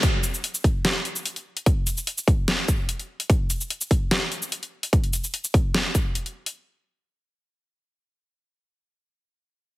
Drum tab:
HH |x-x-x-x-x-x-xx-x|x-x-x-x-x-x-xx-x|x-x-x-x-x-x-xx-x|xxx-x-x-x-x-xx-x|
SH |--xx-x-----x----|--xx-x----x-----|--xx-x-----x----|--xx-x----x-----|
SD |--------o-------|--------o-------|--------o-------|--------o-------|
BD |o-----o---------|o-----o---o-----|o-----o---------|o-----o---o-----|

HH |----------------|----------------|
SH |----------------|----------------|
SD |----------------|----------------|
BD |----------------|----------------|